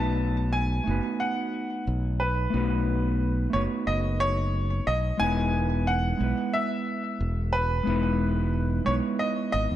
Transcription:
Already playing: B1 A3 B3 D#4 F#4 B4 A5
0.53 G#5
0.84 F#1 A3 B3 D#4
0.89 F#4 B4
1.20 F#5
1.87 B1
2.20 B4
2.50 B1 A3 B3 D#4
2.55 F#4 B4
3.50 F#1 A3 B3 D#4 C#5
3.55 F#4 B4
3.87 F#1 D#5
4.20 C#5
4.87 B1 D#5
5.17 E1 G#3 B3 D#4 G#5
5.22 E4 B4
5.87 F#5
6.17 B1 G#3 B3
6.22 E4 B4
6.53 E5
7.21 E1
7.53 B4
7.83 E1 G#3 B3 D#4
7.88 E4 B4
8.84 B1 G#3 B3 D#4 C#5
8.89 E4 B4
9.19 D#5
9.52 G#1 D#5
9.71 E2

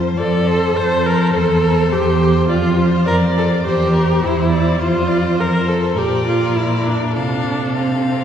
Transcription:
Already playing: F2 C5
0.17 F2 A4 D5
0.47 C5
0.75 F2 A4 C5
1.06 A#4 C5
1.33 E2 A4 C5
1.61 A#4 C5
1.90 E2 G4 C5
2.20 C5
2.49 F2 F4 D5
2.76 C5
3.05 F2 A#4 D5
3.35 A4 C5
3.64 E2 G4 C5
3.93 A#4 C5
4.22 E2 E4 C5
4.51 C5 D5
4.79 F2 F4 C5
5.08 D5
5.37 A#4 C5
5.69 A4
5.96 A#2 G4 A#4 D5
6.28 F4
6.56 E4
6.86 D4
7.15 C3 D4 A4 F5
7.75 C4 F5

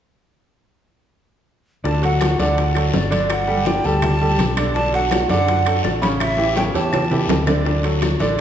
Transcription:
1.84 D2 D3 D4 D5 A5, high bongo, high conga, long guiro
2.02 F#3 F#4 A4 F#5, high conga, high timbale
2.21 high bongo, high conga, high timbale, short guiro, claves
2.39 D2 D3 D4 D5 F#5, high conga, short guiro
2.58 high bongo, high conga, high timbale, long guiro
2.75 F#3 F#4 A4, high conga, high timbale, claves
2.94 G1 D5, high bongo, low bongo, high conga, low timbale, short guiro
3.11 D3 D4 D5, high conga, high timbale, short guiro
3.30 F#5, high bongo, high conga, high timbale, long guiro, claves
3.48 G3 G4 A4, high bongo, high conga
3.65 D3 D4 D5 G5, high bongo, high conga, high timbale, short guiro
3.84 D2 G3 G4 A4 A5, high bongo, high conga, short guiro
4.02 high bongo, high conga, low conga, high timbale, long guiro, claves
4.20 G3 G4 A4, high bongo, high conga
4.38 B1, high bongo, low bongo, high conga, high timbale, short guiro
4.57 D3 D4 D5, high timbale, short guiro, claves
4.75 D3 D4 D5 A5, high bongo, high conga, long guiro
4.93 F#3 F#4 A4 F#5, high conga, high timbale
5.11 high bongo, high conga, high timbale, short guiro, claves
5.29 F#2 D3 D4 D5 F#5, high conga, short guiro
5.48 high bongo, high conga, high timbale, long guiro
5.66 F#3 F#4 A4, high conga, high timbale, claves
5.83 A1 D5, high bongo, low bongo, high conga, short guiro
6.02 C#3 C#4 C#5 B5, high conga, high timbale, short guiro
6.20 E5, high bongo, high conga, high timbale, long guiro, claves
6.37 E3 E4 G4, high bongo, high conga
6.56 C#3 C#4 C#5 G5, high bongo, high conga, high timbale, short guiro
6.74 E2 E3 E4 G4 A5, high bongo, high conga, high timbale, short guiro
6.93 high bongo, high conga, low conga, high timbale, long guiro, claves
7.10 E3 E4 G4, high bongo, high conga, low conga, low timbale
7.29 D2, high bongo, low bongo, high conga, low timbale, short guiro
7.46 D3 D4 D5, high conga, low timbale, short guiro, claves
7.65 D3 D4 D5, high bongo, high conga, long guiro
7.83 F#3 F#4 A4, high conga, high timbale
8.02 high bongo, high conga, high timbale, short guiro, claves
8.20 A1 D3 D4 D5, high conga, short guiro
8.38 long guiro

